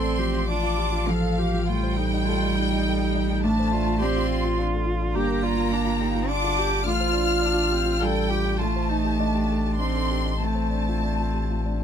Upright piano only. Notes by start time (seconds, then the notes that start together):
Already playing: A2
0.03 D5
0.18 F3
0.34 F4
0.47 D5
0.63 F4
0.78 G4
0.92 F4
1.06 F3
1.22 A3
1.38 F4
1.54 F3
1.69 A2
1.83 C5
1.98 A3
2.14 D#4
2.28 A4
2.43 D#4
2.58 F4
2.73 D#4
2.87 A3
3.01 G3
3.16 D#4
3.29 A3
3.44 A2
3.59 C5
3.73 D4
3.87 F4
4.02 D5
4.16 F4
4.31 G4
4.44 F4
4.59 D4
4.73 A3
4.86 F4
5.01 D4
5.15 G2
5.27 A#4
5.43 D4
5.56 F4
5.85 F4
6.01 G4
6.15 F4
6.28 D4
6.44 D3
6.57 F4
6.70 D4
6.86 A2
7.00 C5
7.13 D4
7.28 F4
7.42 D5
7.54 F4
7.70 G4
7.86 F4
8.01 D4
8.15 A3
8.31 F4
8.46 D4
8.61 A2
8.76 C5
8.91 D#4
9.05 G4
9.20 D#5
9.34 G4
9.51 A4
9.65 G4
9.81 D#4
9.95 A3
10.11 G4
10.26 D#4
10.41 A2
10.55 C5
10.71 D4
10.88 F4
11.03 D5
11.18 F4
11.34 G4
11.50 F4
11.65 D4